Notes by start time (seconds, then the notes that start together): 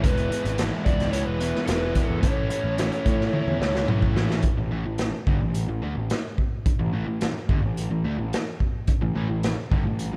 0.03 E1 E2 B2 E3 G#3 B3 E4 B4, kick, closed hi-hat
0.17 closed hi-hat
0.31 E2 B2 E3 G#3 B3 E4, closed hi-hat
0.45 G#1, closed hi-hat
0.58 E2 B2 E3 G#3 B3 E4, snare, closed hi-hat
0.85 C#2 E2 B2 E3 G#3 B3 E4 D5, kick, closed hi-hat
1.00 snare, closed hi-hat
1.11 E2 B2 E3 G#3 B3 E4 C#5, closed hi-hat
1.26 E1 B4
1.40 E2 B2 E3 G#3 B3 E4, closed hi-hat
1.55 snare
1.66 E1 E2 B2 E3 G#3 B3 E4 B4, snare, closed hi-hat
1.95 E2 B2 E3 G#3 B3 E4, kick, closed hi-hat
2.07 E2 A4
2.21 A1 A2 E3 A3 C#4 E4 C#5, kick, closed hi-hat
2.50 A2 E3 A3 C#4 E4, closed hi-hat
2.64 A1
2.78 A2 E3 A3 C#4 E4, snare, closed hi-hat
2.92 closed hi-hat
3.06 A2 E3 A3 C#4 E4, kick, closed hi-hat
3.21 snare
3.33 A2 E3 A3 C#4 E4, high tom
3.47 E2, high tom
3.60 C#2 A2 E3 A3 C#4 E4, snare
3.75 snare
3.88 B1 A2 E3 A3 C#4 E4, mid tom
4.02 kick
4.15 A1 A2 E3 A3 C#4 E4, snare
4.30 snare
4.42 kick, closed hi-hat
4.58 A1 A2 E3
4.71 A1 A2 E3
4.85 A1 A2 E3
4.98 snare, closed hi-hat
5.27 G1 G2 D3, kick
5.41 A1 A2 E3
5.54 closed hi-hat
5.68 A1 A2 E3
5.82 D2 D3 A3
5.95 A1 A2 E3
6.10 snare, closed hi-hat
6.38 kick
6.66 kick, closed hi-hat
6.79 A1 A2 E3
6.93 A1 A2 E3
7.07 A1 A2 E3
7.21 snare, closed hi-hat
7.49 G1 G2 D3, kick
7.62 A1 A2 E3
7.77 closed hi-hat
7.91 A1 A2 E3
8.04 D2 D3 A3
8.18 A1 A2 E3
8.33 snare, closed hi-hat
8.60 kick
8.87 kick, closed hi-hat
9.01 A1 A2 E3
9.15 A1 A2 E3
9.29 A1 A2 E3
9.43 snare, closed hi-hat
9.71 G1 G2 D3, kick
9.85 A1 A2 E3
9.99 closed hi-hat
10.13 A1 A2 E3